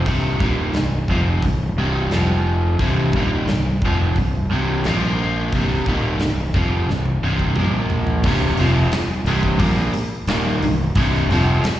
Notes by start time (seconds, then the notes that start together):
0.06 C1 C2 G2 C3, kick, open hi-hat
0.40 D#1 D#2 A#2 D#3, kick
0.74 C1 C2 G2, snare, open hi-hat
1.08 F1 F2 C3 F3, kick
1.42 C1 C2 G2, kick, open hi-hat
1.76 C1 C2 G2 C3
2.11 F1 F2 C3 F3, snare, open hi-hat
2.79 C1 C2 G2 C3, kick, open hi-hat
3.13 D#1 D#2 A#2, kick
3.17 D#3
3.48 C1 C2 G2, snare, open hi-hat
3.82 F1 F2 C3 F3, kick
4.15 C1 C2 G2, kick, open hi-hat
4.51 C1 C2 G2 C3
4.84 A#1 A#2 F3 A#3, snare, open hi-hat
5.53 C1 C2 G2 C3, kick, open hi-hat
5.86 D#1 D#2 A#2 D#3, kick
6.19 C1 C2 G2, snare, open hi-hat
6.54 F1 F2 C3 F3, kick
6.87 C1 C2 G2, snare
7.05 high tom
7.21 C1 C2 G2 C3
7.39 kick
7.55 A#1 A#2 F3, mid tom
7.60 A#3
7.90 floor tom
8.07 floor tom
8.23 C1 C2 G2 C3, kick, crash
8.57 F1 F2 C3 F3, open hi-hat
8.92 muted fingered electric bass stroke, muted overdriven electric guitar stroke, snare, open hi-hat
9.24 C1 C2 G2 C3, open hi-hat
9.43 kick
9.59 A#1 A#2 F3 A#3, kick, open hi-hat
9.94 muted fingered electric bass stroke, muted overdriven electric guitar stroke, open hi-hat
10.27 D#1 D#2 A#2 D#3, snare, open hi-hat
10.62 C1 C2 G2, open hi-hat
10.95 C1 C2 G2 C3, kick, open hi-hat
11.15 snare
11.29 F1 F2 C3 F3, open hi-hat
11.64 muted fingered electric bass stroke, muted overdriven electric guitar stroke, snare, open hi-hat